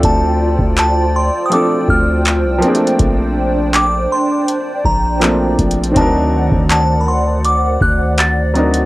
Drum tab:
HH |x-----------x-----------x-----------x-----x-x-x-|x-----------x-----------x-----------x-----x-x-x-|x-----------x-----------x-----------x-----x--x--|
CP |------------x-----------------------x-----------|------------x-----------------------x-----------|------------x-----------------------x-----------|
BD |o--------o--------------------o-----------------|o-----------------------------o-----------o-----|o--------o--------------------o-----------------|